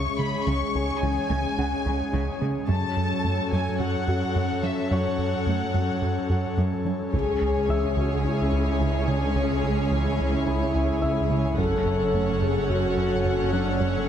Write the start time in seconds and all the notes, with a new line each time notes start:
Already playing: G#3 C#4 G#4 C#5 E5 C#6
0.18 C#3 G#3 B5
0.45 C#2 C#3 C#6
0.74 C#2 G#4 G#5
1.01 C#2 C#3 E3 G#5
1.29 C#2 C#3
1.57 C#2 C#3 C#4 F#5
1.85 C#2 C#3 C#4
2.13 C#2 C#3
2.41 C#3 G#3
2.68 F#2 F#3 C#4 A4 C#5 A5
2.96 F#2
3.24 F#2 A3
3.52 F#2 F#3 G#5
3.79 F#2 F#4 F#5
4.07 F#2 F#4
4.34 F#2 F#3
4.62 F#2 F#3 C#4 E5
4.90 F#2 F#3 C#5 F#5 C#6
5.18 F#2
5.46 F#2 A3
5.74 F#2 F#3
6.01 F#2 F#4
6.29 F#2 F#4
6.57 F#2 F#3
6.85 F#2 F#3 C#4
7.13 C#2 C#3 C#4 G#4 C#5 G#5, taiko
7.41 C#2
7.68 C#2 E3 E5 E6
7.96 C#2 C#3 F#4
8.24 C#2 C#4 E4
8.52 C#2 C#4
8.80 C#2 C#3
9.07 C#3 G#3 D4
9.35 C#2 C#3 C#4
9.63 C#2
9.91 C#2 E3 E4
10.19 C#2 C#3
10.46 C#2 C#4 B5
10.74 C#2 C#4
11.02 C#2 C#3 E5 E6
11.30 C#3 G#3
11.57 F#1 F#2 C#3 F#3 C#4 A4 C#5 F#5, taiko
11.85 F#2
12.13 F#2 A3
12.41 F#2 F#3 G#4
12.69 F#2 F#4
12.97 F#2 F#4
13.25 F#2 F#3
13.52 F#3 C#4 D4 F#6
13.80 F#2 F#3 C#4